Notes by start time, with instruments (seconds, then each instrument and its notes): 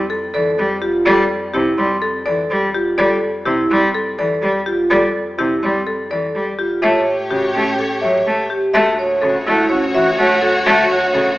Already playing: double bass F2, vibraphone C4
0.10 marimba A4
0.34 cello E3, vibraphone A4, marimba D5
0.58 cello G3
0.82 vibraphone F4, marimba G4
1.05 cello G3, vibraphone A4, marimba D5
1.54 cello C3, vibraphone E4, marimba G4
1.78 cello G3, vibraphone C4
2.02 marimba A4
2.26 cello E3, vibraphone A4, marimba D5
2.50 cello G3
2.74 vibraphone F4, marimba G4
2.98 cello G3, vibraphone A4, marimba D5
3.45 cello C3, vibraphone E4, marimba G4
3.70 cello G3, vibraphone C4
3.94 marimba A4
4.18 cello E3, vibraphone A4, marimba D5
4.42 cello G3
4.66 vibraphone F4, marimba G4
4.90 cello G3, vibraphone A4, marimba D5
5.38 cello C3, vibraphone E4, marimba G4
5.62 cello G3, vibraphone C4
5.87 marimba A4
6.10 cello E3, vibraphone A4, marimba D5
6.35 cello G3
6.59 vibraphone F4, marimba G4
6.82 double bass A2, cello A3, alto flute G4, violin section G4 C#5, vibraphone C#5, marimba E5
7.30 cello C#3, vibraphone F#4, marimba G4
7.55 cello A3, vibraphone C#4
7.79 marimba A4
8.01 cello F#3, vibraphone C#5, marimba E5
8.26 cello A3
8.50 marimba G4, vibraphone G4
8.74 double bass D2, cello A3, alto flute F#4, violin section F#4 C#5, vibraphone F#4, marimba E5
8.99 alto flute F#4, vibraphone C#5
9.22 cello C#3, alto flute F#4, marimba A4
9.45 cello A3, vibraphone E4, alto flute F#4
9.69 vibraphone C#4, alto flute F#4, marimba C#5
9.94 cello E3, alto flute F#4, marimba E5
10.18 cello A3, alto flute F#4, vibraphone C#5
10.42 alto flute F#4, marimba A4
10.66 cello A3, vibraphone F#4, alto flute F#4, marimba E5
10.90 alto flute F#4, vibraphone C#5
11.14 cello C#3, alto flute F#4, marimba A4